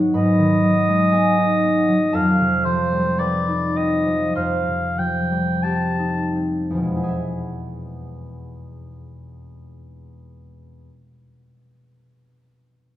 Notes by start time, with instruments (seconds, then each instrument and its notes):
Already playing: harp G#2 D#3 F#3 G#3 B3 D#4 F#4 B4 C#5 B5 C#6
0.14 harp G#2 B4 B5, oboe D#5
0.39 harp D#3
0.63 harp F#3
0.89 harp G#3
1.12 harp B3 G#4 G#5
1.63 harp B3
1.89 harp F#3
2.13 harp F2 A4 A5, oboe F5
2.40 harp C3
2.65 harp F3, oboe C5
2.93 harp G3
3.19 harp C4 B4 B5, oboe D5
3.48 harp D#4
3.76 harp C4, oboe D#5
4.06 harp F3
4.35 harp F2 C5 C6, oboe F5
4.67 harp C3
4.99 harp F3, oboe G5
5.32 harp G3
5.63 harp C4 G4 G5, oboe A5
5.99 harp D#4
6.36 harp C4
6.70 harp E2 F3
6.77 harp B2
6.83 harp G#3
6.90 harp B3
6.96 harp E4
7.03 harp G#4
7.08 harp E5